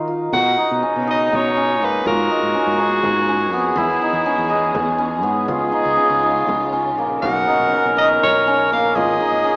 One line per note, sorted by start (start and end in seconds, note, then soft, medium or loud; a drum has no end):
0.00 0.29 D#3 medium
0.00 0.57 D#4 medium
0.00 2.15 A#4 medium
0.08 0.39 F4 medium
0.32 0.55 B2 medium
0.32 2.05 C#3 medium
0.32 2.05 B3 medium
0.32 2.07 D#4 medium
0.32 2.05 D#4 medium
0.32 2.12 F#4 medium
0.32 0.79 F#5 loud
0.32 frame drum medium
0.58 1.07 D#4 medium
0.71 0.82 B2 medium
0.83 1.56 C#4 medium
0.83 frame drum soft
0.96 1.29 B2 medium
1.07 2.30 D#4 medium
1.07 1.37 D#5 medium
1.32 1.82 B2 medium
1.32 1.86 C#5 medium
1.32 frame drum medium
1.57 2.54 C#4 medium
1.57 frame drum soft
1.82 2.04 G#2 medium
1.82 3.59 A#3 medium
1.82 2.06 B4 medium
2.06 2.28 G#2 medium
2.06 3.76 B2 medium
2.06 3.77 A#3 medium
2.06 3.84 F4 medium
2.06 3.79 F#4 loud
2.06 5.46 G#4 medium
2.06 2.81 A#4 loud
2.06 frame drum medium
2.30 2.79 D#4 medium
2.43 2.54 G#2 medium
2.54 3.28 C#4 medium
2.54 frame drum soft
2.67 3.00 G#2 medium
2.79 3.84 D#4 medium
2.79 3.29 G#4 medium
3.03 3.52 G#2 medium
3.03 frame drum medium
3.28 4.25 C#4 medium
3.28 frame drum soft
3.52 3.75 F2 medium
3.52 5.23 B3 medium
3.76 3.99 E2 loud
3.76 5.47 E3 medium
3.76 5.46 B3 medium
3.76 5.22 E4 medium
3.76 4.08 E4 medium
3.76 frame drum medium
4.02 5.72 D#4 medium
4.13 4.25 E2 medium
4.26 4.98 C#4 medium
4.26 frame drum soft
4.38 4.71 E2 medium
4.50 6.87 D#5 medium
4.75 5.24 E2 medium
4.75 frame drum medium
4.98 5.96 C#4 medium
5.23 5.46 G#2 medium
5.23 7.04 B3 medium
5.47 5.71 C#2 medium
5.47 8.92 C#3 medium
5.47 7.20 G#3 medium
5.47 7.29 F4 medium
5.47 7.20 F4 medium
5.47 6.93 G#4 loud
5.47 frame drum medium
5.72 6.23 D#4 medium
5.85 5.97 C#2 medium
5.97 6.72 C#4 medium
5.97 frame drum soft
6.10 6.44 C#2 medium
6.23 7.47 D#4 medium
6.23 frame drum soft
6.47 6.97 C#2 medium
6.47 frame drum medium
6.73 7.72 C#4 medium
6.73 frame drum soft
6.97 7.20 A#1 medium
6.97 8.72 A#3 medium
6.97 frame drum soft
7.16 7.23 A4 medium
7.22 7.45 B1 medium
7.22 8.94 B3 medium
7.22 8.94 D#4 medium
7.22 9.03 F#4 medium
7.22 8.97 A#4 loud
7.22 7.93 F#5 loud
7.22 frame drum medium
7.48 7.96 D#4 medium
7.60 7.71 B1 medium
7.73 8.47 C#4 medium
7.73 frame drum soft
7.85 8.18 B1 medium
7.97 9.20 D#4 medium
7.97 8.09 D#5 medium
8.23 8.72 B1 medium
8.23 8.68 C#5 medium
8.23 frame drum medium
8.47 9.44 C#4 medium
8.47 frame drum soft
8.72 8.93 A#1 medium
8.72 9.56 A#3 medium
8.72 8.97 F5 medium
8.94 9.17 G#1 loud
8.94 9.56 B2 medium
8.94 9.56 A#3 medium
8.94 9.56 F4 medium
8.94 9.56 G#4 loud
8.94 9.56 G#4 medium
8.94 9.56 D#5 medium
8.94 frame drum medium
9.20 9.56 D#4 medium
9.32 9.43 G#1 medium
9.44 9.56 C#4 medium
9.44 frame drum soft